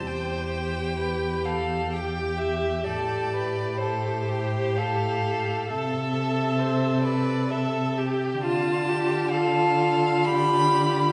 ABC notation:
X:1
M:3/4
L:1/8
Q:1/4=65
K:Am
V:1 name="Violin"
g3 f g e | d2 c2 f2 | e3 d e z | a2 f2 b2 |]
V:2 name="Violin"
c2 B A G2 | A B A G A2 | A2 c B A G | F G A2 G2 |]
V:3 name="Viola"
G4 G2 | G2 G4 | A4 A G | F2 F4 |]
V:4 name="Cello" clef=bass
E,,6 | A,,6 | C,6 | D,6 |]